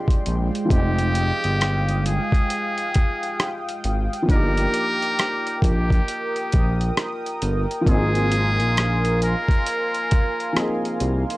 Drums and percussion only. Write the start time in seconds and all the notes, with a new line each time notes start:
0.08 kick, closed hi-hat
0.26 closed hi-hat
0.55 closed hi-hat
0.70 kick, closed hi-hat
0.98 closed hi-hat
1.15 closed hi-hat
1.44 closed hi-hat
1.61 cross-stick, closed hi-hat
1.89 closed hi-hat
2.06 closed hi-hat
2.32 kick, closed hi-hat
2.50 closed hi-hat
2.78 closed hi-hat
2.94 kick, closed hi-hat
3.23 closed hi-hat
3.40 cross-stick, closed hi-hat
3.69 closed hi-hat
3.84 closed hi-hat
4.13 closed hi-hat
4.29 kick, closed hi-hat
4.57 closed hi-hat
4.74 closed hi-hat
5.02 closed hi-hat
5.19 cross-stick, closed hi-hat
5.47 closed hi-hat
5.62 kick, closed hi-hat
5.90 kick, closed hi-hat
6.08 closed hi-hat
6.36 closed hi-hat
6.52 kick, closed hi-hat
6.81 closed hi-hat
6.97 cross-stick, closed hi-hat
7.26 closed hi-hat
7.42 closed hi-hat
7.71 closed hi-hat
7.87 kick, closed hi-hat
8.15 closed hi-hat
8.32 closed hi-hat
8.60 closed hi-hat
8.77 cross-stick, closed hi-hat
9.05 closed hi-hat
9.22 closed hi-hat
9.48 kick, closed hi-hat
9.66 closed hi-hat
9.94 closed hi-hat
10.11 kick, closed hi-hat
10.40 closed hi-hat
10.56 cross-stick, closed hi-hat
10.85 closed hi-hat
11.00 closed hi-hat
11.30 closed hi-hat